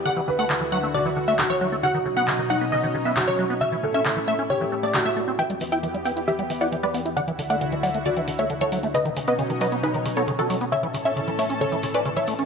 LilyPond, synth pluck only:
\new Staff \with { instrumentName = "Synth pluck" } { \time 4/4 \key e \dorian \tempo 4 = 135 fis''8 r16 fis''8 r16 fis''16 r16 d''8 r16 e''16 r16 cis''8 r16 | fis''8 r16 fis''8 r16 fis''16 r16 dis''8 r16 e''16 r16 cis''8 r16 | e''8 r16 e''8 r16 e''16 r16 cis''8 r16 d''16 r16 e''8 r16 | <e'' g''>8 r16 <e'' g''>8 r16 <e'' g''>16 r16 <g' e''>8 r16 <d'' fis''>16 r16 <b' d''>8 r16 |
<d'' fis''>8 r16 <d'' fis''>8 r16 <d'' fis''>16 r16 <fis' d''>8 r16 <cis'' e''>16 r16 <a' cis''>8 r16 | <b' dis''>8 r16 <b' dis''>8 r16 <b' dis''>16 r16 <dis' b'>8 r16 <a' cis''>16 r16 <fis' a'>8 r16 | <cis'' e''>8 r16 <cis'' e''>8 r16 <cis'' e''>16 r16 <a' cis''>8 r16 <b' d''>16 r16 <cis'' e''>8 r16 | }